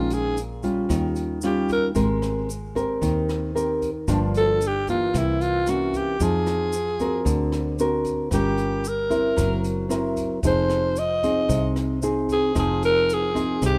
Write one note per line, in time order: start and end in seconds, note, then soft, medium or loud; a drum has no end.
0.00 0.86 A#1 loud
0.00 0.87 A#2 medium
0.00 0.37 D#3 medium
0.00 0.37 G#3 medium
0.00 0.37 C#4 medium
0.00 0.15 F4 medium
0.10 0.38 G#4 medium
0.10 closed hi-hat soft
0.10 shaker soft
0.37 closed hi-hat soft
0.37 shaker medium
0.63 1.39 G3 medium
0.63 1.39 C#4 medium
0.63 1.39 F4 medium
0.63 kick soft
0.63 closed hi-hat soft
0.63 shaker soft
0.89 1.92 D#2 loud
0.89 1.93 D#3 medium
0.89 kick medium
0.89 cross-stick medium
0.89 closed hi-hat medium
0.89 shaker medium
1.16 closed hi-hat soft
1.16 shaker soft
1.42 1.92 G3 medium
1.42 1.92 C#4 medium
1.42 1.92 F4 medium
1.42 cross-stick medium
1.42 closed hi-hat soft
1.42 shaker medium
1.46 1.69 G4 medium
1.69 1.88 A#4 medium
1.69 kick soft
1.69 closed hi-hat soft
1.69 shaker soft
1.95 2.98 G#1 loud
1.95 2.99 G#3 medium
1.95 2.48 C4 medium
1.95 2.48 G4 medium
1.95 2.49 A#4 medium
1.95 kick medium
1.95 closed hi-hat medium
1.95 shaker medium
2.22 cross-stick medium
2.22 closed hi-hat soft
2.22 shaker soft
2.49 closed hi-hat soft
2.49 shaker medium
2.75 3.51 C4 medium
2.75 3.51 G4 medium
2.75 3.51 A#4 medium
2.75 kick soft
2.75 closed hi-hat soft
2.75 shaker soft
3.01 4.04 D#2 loud
3.01 4.05 D#3 medium
3.01 kick medium
3.01 closed hi-hat medium
3.01 shaker medium
3.29 cross-stick medium
3.29 closed hi-hat soft
3.29 shaker soft
3.55 3.89 C4 medium
3.55 3.89 G4 medium
3.55 3.89 A#4 medium
3.55 closed hi-hat soft
3.55 shaker medium
3.82 kick soft
3.82 closed hi-hat soft
3.82 shaker soft
4.08 5.10 G1 loud
4.08 5.11 G2 medium
4.08 4.61 F3 medium
4.08 4.61 A#3 medium
4.08 4.61 D4 medium
4.08 kick medium
4.08 cross-stick medium
4.08 closed hi-hat medium
4.08 shaker medium
4.34 4.69 A4 medium
4.34 closed hi-hat soft
4.34 shaker soft
4.60 closed hi-hat soft
4.60 shaker medium
4.67 4.89 G4 medium
4.87 5.63 E3 medium
4.87 5.63 A#3 medium
4.87 5.19 F4 medium
4.87 kick soft
4.87 closed hi-hat soft
4.87 shaker soft
5.14 6.16 C2 loud
5.14 6.17 C3 medium
5.14 kick medium
5.14 cross-stick medium
5.14 closed hi-hat medium
5.14 shaker medium
5.18 5.43 E4 medium
5.41 5.71 F4 medium
5.41 closed hi-hat soft
5.41 shaker soft
5.67 6.16 E3 medium
5.67 6.16 A#3 medium
5.67 6.16 C#4 medium
5.67 5.98 F#4 medium
5.67 cross-stick medium
5.67 closed hi-hat soft
5.67 shaker medium
5.94 6.25 G4 medium
5.94 kick soft
5.94 closed hi-hat soft
5.94 shaker soft
6.20 7.22 F2 medium
6.20 7.24 F3 medium
6.20 6.73 C4 medium
6.20 6.73 D#4 medium
6.20 6.74 G#4 medium
6.20 7.28 G#4 medium
6.20 kick medium
6.20 closed hi-hat medium
6.20 shaker medium
6.47 cross-stick medium
6.47 closed hi-hat soft
6.47 shaker soft
6.73 closed hi-hat soft
6.73 shaker medium
6.99 7.75 C4 medium
6.99 7.75 F#4 medium
6.99 7.75 A#4 medium
6.99 kick soft
6.99 closed hi-hat soft
6.99 shaker soft
7.25 8.28 D2 loud
7.25 8.29 D3 medium
7.25 kick medium
7.25 closed hi-hat medium
7.25 shaker medium
7.52 cross-stick medium
7.52 closed hi-hat soft
7.52 shaker soft
7.79 8.28 C4 medium
7.79 8.28 F#4 medium
7.79 8.29 A#4 medium
7.79 closed hi-hat soft
7.79 shaker medium
8.04 kick soft
8.04 closed hi-hat soft
8.04 shaker soft
8.31 9.34 G1 medium
8.31 9.36 G3 medium
8.31 8.85 C#4 medium
8.31 8.85 F4 medium
8.31 8.90 G4 medium
8.31 8.85 A#4 medium
8.31 kick medium
8.31 cross-stick medium
8.31 closed hi-hat medium
8.31 shaker medium
8.57 closed hi-hat soft
8.57 shaker soft
8.84 closed hi-hat soft
8.84 shaker medium
8.88 9.66 A#4 medium
9.10 9.86 C4 medium
9.10 9.86 E4 medium
9.10 9.86 A#4 medium
9.10 kick soft
9.10 closed hi-hat soft
9.10 shaker soft
9.36 10.40 F#1 loud
9.36 10.40 F#3 medium
9.36 kick medium
9.36 cross-stick medium
9.36 closed hi-hat medium
9.36 shaker medium
9.64 closed hi-hat soft
9.64 shaker soft
9.89 10.39 C4 medium
9.89 10.39 E4 medium
9.89 10.39 A#4 medium
9.89 cross-stick medium
9.89 closed hi-hat soft
9.89 shaker medium
10.17 kick soft
10.17 closed hi-hat soft
10.17 shaker soft
10.43 11.45 F1 loud
10.43 11.47 F3 medium
10.43 10.97 C4 medium
10.43 10.97 D#4 medium
10.43 10.97 G#4 medium
10.43 kick medium
10.43 closed hi-hat medium
10.43 shaker medium
10.47 11.00 C5 medium
10.69 cross-stick medium
10.69 closed hi-hat soft
10.69 shaker soft
10.96 11.77 D#5 loud
10.96 closed hi-hat soft
10.96 shaker medium
11.23 11.99 C4 medium
11.23 11.99 D#4 medium
11.23 11.99 G#4 medium
11.23 kick soft
11.23 closed hi-hat soft
11.23 shaker soft
11.49 12.52 C2 loud
11.49 12.53 C3 medium
11.49 kick medium
11.49 closed hi-hat medium
11.49 shaker medium
11.76 cross-stick medium
11.76 closed hi-hat soft
11.76 shaker soft
12.02 12.52 C4 medium
12.02 12.52 D#4 medium
12.02 12.52 G#4 medium
12.02 closed hi-hat soft
12.02 shaker medium
12.29 12.56 G#4 medium
12.29 kick soft
12.29 closed hi-hat soft
12.29 shaker soft
12.55 13.58 F1 loud
12.55 13.59 F3 medium
12.55 13.31 C4 medium
12.55 13.31 D#4 medium
12.55 13.31 G#4 medium
12.55 kick medium
12.55 cross-stick medium
12.55 closed hi-hat medium
12.55 shaker medium
12.59 12.82 G#4 medium
12.83 13.15 A#4 loud
12.83 closed hi-hat soft
12.83 shaker soft
13.09 closed hi-hat soft
13.09 shaker medium
13.14 13.64 G#4 medium
13.35 13.79 C4 medium
13.35 13.79 D#4 medium
13.35 13.79 G#4 medium
13.35 kick soft
13.35 closed hi-hat soft
13.35 shaker soft
13.62 13.79 C2 loud
13.62 13.79 C3 medium
13.62 kick medium
13.62 cross-stick medium
13.62 closed hi-hat medium
13.62 shaker medium
13.66 13.79 G4 medium